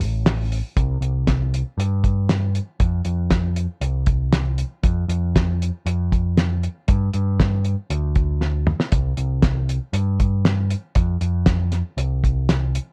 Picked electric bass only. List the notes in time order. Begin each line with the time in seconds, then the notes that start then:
0.00 A1
0.77 C2
1.01 C2
1.78 G2
2.80 F2
3.05 F2
3.81 C2
4.83 F2
5.08 F2
5.85 F2
6.88 G2
7.14 G2
7.90 D2
8.92 C2
9.17 C2
9.93 G2
10.96 F2
11.21 F2
11.97 C2